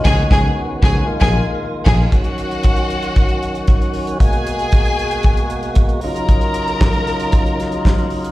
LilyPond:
<<
  \new Staff \with { instrumentName = "Vibraphone" } { \time 4/4 \key ees \minor \tempo 4 = 115 ees''8 r2. r8 | r1 | r1 | r1 | }
  \new Staff \with { instrumentName = "String section" } { \time 4/4 \key ees \minor <aes' aes''>8 <aes' aes''>8 r8 <aes' aes''>8 r16 <aes' aes''>8 r8. <aes' aes''>8 | <ges' ges''>2.~ <ges' ges''>8 r8 | <aes' aes''>2. r8 <bes' bes''>8~ | <bes' bes''>2.~ <bes' bes''>8 r8 | }
  \new Staff \with { instrumentName = "Tonewheel organ" } { \time 4/4 \key ees \minor <ees ces' des' ges'>2 <ees aes bes f'>2 | <ees ges des' ges'>1 | <ces aes bes ges'>2.~ <ces aes bes ges'>8 <des ges ees' f'>8~ | <des ges ees' f'>1 | }
  \new Staff \with { instrumentName = "Fingered electric bass" } { \clef bass \time 4/4 \key ees \minor des,8 des,8 r8 des,8 r16 bes,,8 r8. bes,,8 | r1 | r1 | r1 | }
  \new DrumStaff \with { instrumentName = "Drums" } \drummode { \time 4/4 <cymc bd sn>8 <bd sn>8 r8 <bd sn>8 r16 <bd sn>8. r8 <cymc bd sn>8 | <hh bd>16 hh16 hh16 hh16 <hh bd>16 hh16 hh16 hh16 <hh bd>16 hh16 hh16 hh16 <hh bd>16 hh16 hho16 hh16 | <hh bd>16 hh16 hh16 hh16 <hh bd>16 hh16 hh16 hh16 <hh bd>16 hh16 hh16 hh16 <hh bd>16 hh16 hho16 hh16 | <hh bd>16 hh16 hh16 hh16 <hc bd sn>16 hh16 hh16 hh16 <hh bd>16 hh16 <hh sn>16 hh16 <hc bd sn>16 hh16 hho16 hh16 | }
>>